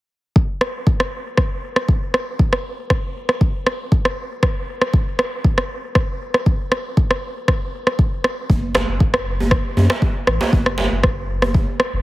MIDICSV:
0, 0, Header, 1, 4, 480
1, 0, Start_track
1, 0, Key_signature, 3, "minor"
1, 0, Tempo, 508475
1, 339, Time_signature, 4, 2, 24, 8
1, 11347, End_track
2, 0, Start_track
2, 0, Title_t, "Sub bass"
2, 0, Program_c, 0, 38
2, 8020, Note_on_c, 0, 30, 96
2, 8353, Note_off_c, 0, 30, 0
2, 8386, Note_on_c, 0, 30, 83
2, 8481, Note_off_c, 0, 30, 0
2, 8499, Note_on_c, 0, 30, 76
2, 9072, Note_off_c, 0, 30, 0
2, 9218, Note_on_c, 0, 42, 75
2, 9324, Note_off_c, 0, 42, 0
2, 9699, Note_on_c, 0, 33, 79
2, 9805, Note_off_c, 0, 33, 0
2, 9938, Note_on_c, 0, 30, 96
2, 10272, Note_off_c, 0, 30, 0
2, 10305, Note_on_c, 0, 30, 91
2, 10400, Note_off_c, 0, 30, 0
2, 10419, Note_on_c, 0, 30, 76
2, 10992, Note_off_c, 0, 30, 0
2, 11264, Note_on_c, 0, 30, 87
2, 11347, Note_off_c, 0, 30, 0
2, 11347, End_track
3, 0, Start_track
3, 0, Title_t, "Djembe"
3, 8021, Note_on_c, 9, 64, 72
3, 8116, Note_off_c, 9, 64, 0
3, 8255, Note_on_c, 9, 63, 78
3, 8257, Note_on_c, 9, 62, 95
3, 8350, Note_off_c, 9, 63, 0
3, 8351, Note_off_c, 9, 62, 0
3, 8877, Note_on_c, 9, 63, 74
3, 8971, Note_off_c, 9, 63, 0
3, 9222, Note_on_c, 9, 63, 92
3, 9317, Note_off_c, 9, 63, 0
3, 9344, Note_on_c, 9, 62, 90
3, 9438, Note_off_c, 9, 62, 0
3, 9457, Note_on_c, 9, 63, 50
3, 9552, Note_off_c, 9, 63, 0
3, 9824, Note_on_c, 9, 62, 94
3, 9826, Note_on_c, 9, 63, 91
3, 9919, Note_off_c, 9, 62, 0
3, 9921, Note_off_c, 9, 63, 0
3, 9937, Note_on_c, 9, 64, 78
3, 10032, Note_off_c, 9, 64, 0
3, 10174, Note_on_c, 9, 62, 102
3, 10183, Note_on_c, 9, 63, 73
3, 10268, Note_off_c, 9, 62, 0
3, 10278, Note_off_c, 9, 63, 0
3, 10784, Note_on_c, 9, 63, 64
3, 10879, Note_off_c, 9, 63, 0
3, 10902, Note_on_c, 9, 63, 53
3, 10996, Note_off_c, 9, 63, 0
3, 11347, End_track
4, 0, Start_track
4, 0, Title_t, "Drums"
4, 338, Note_on_c, 9, 36, 109
4, 432, Note_off_c, 9, 36, 0
4, 577, Note_on_c, 9, 37, 83
4, 671, Note_off_c, 9, 37, 0
4, 818, Note_on_c, 9, 36, 104
4, 913, Note_off_c, 9, 36, 0
4, 944, Note_on_c, 9, 37, 74
4, 1038, Note_off_c, 9, 37, 0
4, 1298, Note_on_c, 9, 37, 83
4, 1299, Note_on_c, 9, 36, 107
4, 1392, Note_off_c, 9, 37, 0
4, 1393, Note_off_c, 9, 36, 0
4, 1664, Note_on_c, 9, 37, 72
4, 1758, Note_off_c, 9, 37, 0
4, 1779, Note_on_c, 9, 36, 104
4, 1874, Note_off_c, 9, 36, 0
4, 2020, Note_on_c, 9, 37, 84
4, 2115, Note_off_c, 9, 37, 0
4, 2260, Note_on_c, 9, 36, 111
4, 2354, Note_off_c, 9, 36, 0
4, 2385, Note_on_c, 9, 37, 76
4, 2479, Note_off_c, 9, 37, 0
4, 2739, Note_on_c, 9, 36, 110
4, 2739, Note_on_c, 9, 37, 86
4, 2833, Note_off_c, 9, 37, 0
4, 2834, Note_off_c, 9, 36, 0
4, 3105, Note_on_c, 9, 37, 74
4, 3199, Note_off_c, 9, 37, 0
4, 3219, Note_on_c, 9, 36, 111
4, 3313, Note_off_c, 9, 36, 0
4, 3460, Note_on_c, 9, 37, 83
4, 3554, Note_off_c, 9, 37, 0
4, 3699, Note_on_c, 9, 36, 112
4, 3793, Note_off_c, 9, 36, 0
4, 3825, Note_on_c, 9, 37, 80
4, 3919, Note_off_c, 9, 37, 0
4, 4179, Note_on_c, 9, 36, 114
4, 4180, Note_on_c, 9, 37, 85
4, 4273, Note_off_c, 9, 36, 0
4, 4274, Note_off_c, 9, 37, 0
4, 4545, Note_on_c, 9, 37, 75
4, 4640, Note_off_c, 9, 37, 0
4, 4659, Note_on_c, 9, 36, 114
4, 4753, Note_off_c, 9, 36, 0
4, 4898, Note_on_c, 9, 37, 90
4, 4993, Note_off_c, 9, 37, 0
4, 5140, Note_on_c, 9, 36, 109
4, 5234, Note_off_c, 9, 36, 0
4, 5265, Note_on_c, 9, 37, 74
4, 5359, Note_off_c, 9, 37, 0
4, 5619, Note_on_c, 9, 37, 86
4, 5620, Note_on_c, 9, 36, 113
4, 5713, Note_off_c, 9, 37, 0
4, 5715, Note_off_c, 9, 36, 0
4, 5988, Note_on_c, 9, 37, 74
4, 6082, Note_off_c, 9, 37, 0
4, 6101, Note_on_c, 9, 36, 108
4, 6195, Note_off_c, 9, 36, 0
4, 6340, Note_on_c, 9, 37, 91
4, 6434, Note_off_c, 9, 37, 0
4, 6581, Note_on_c, 9, 36, 109
4, 6675, Note_off_c, 9, 36, 0
4, 6708, Note_on_c, 9, 37, 82
4, 6802, Note_off_c, 9, 37, 0
4, 7062, Note_on_c, 9, 36, 110
4, 7062, Note_on_c, 9, 37, 90
4, 7156, Note_off_c, 9, 36, 0
4, 7156, Note_off_c, 9, 37, 0
4, 7428, Note_on_c, 9, 37, 72
4, 7522, Note_off_c, 9, 37, 0
4, 7541, Note_on_c, 9, 36, 109
4, 7635, Note_off_c, 9, 36, 0
4, 7781, Note_on_c, 9, 37, 88
4, 7876, Note_off_c, 9, 37, 0
4, 8020, Note_on_c, 9, 36, 113
4, 8115, Note_off_c, 9, 36, 0
4, 8261, Note_on_c, 9, 37, 91
4, 8355, Note_off_c, 9, 37, 0
4, 8500, Note_on_c, 9, 36, 111
4, 8594, Note_off_c, 9, 36, 0
4, 8625, Note_on_c, 9, 37, 77
4, 8720, Note_off_c, 9, 37, 0
4, 8979, Note_on_c, 9, 36, 109
4, 8979, Note_on_c, 9, 37, 85
4, 9073, Note_off_c, 9, 36, 0
4, 9073, Note_off_c, 9, 37, 0
4, 9346, Note_on_c, 9, 37, 73
4, 9440, Note_off_c, 9, 37, 0
4, 9459, Note_on_c, 9, 36, 114
4, 9553, Note_off_c, 9, 36, 0
4, 9698, Note_on_c, 9, 37, 88
4, 9792, Note_off_c, 9, 37, 0
4, 9939, Note_on_c, 9, 36, 111
4, 10033, Note_off_c, 9, 36, 0
4, 10065, Note_on_c, 9, 37, 69
4, 10159, Note_off_c, 9, 37, 0
4, 10417, Note_on_c, 9, 37, 84
4, 10418, Note_on_c, 9, 36, 103
4, 10511, Note_off_c, 9, 37, 0
4, 10513, Note_off_c, 9, 36, 0
4, 10783, Note_on_c, 9, 37, 73
4, 10877, Note_off_c, 9, 37, 0
4, 10898, Note_on_c, 9, 36, 111
4, 10992, Note_off_c, 9, 36, 0
4, 11136, Note_on_c, 9, 37, 82
4, 11230, Note_off_c, 9, 37, 0
4, 11347, End_track
0, 0, End_of_file